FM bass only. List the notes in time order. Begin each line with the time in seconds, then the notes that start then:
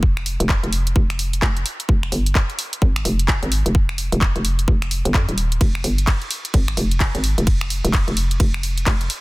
Already playing: F1
0.40 F1
0.63 F1
0.96 F1
1.42 F1
1.89 F1
2.12 G1
2.82 G#1
3.05 F1
3.43 G#1
3.66 F1
4.12 F1
4.36 F1
4.68 F1
5.05 G1
5.14 F2
5.29 D#1
5.61 F1
5.84 G1
6.54 G#1
6.77 F1
7.15 G#1
7.38 F1
7.84 F1
8.08 F1
8.40 F1
8.86 F1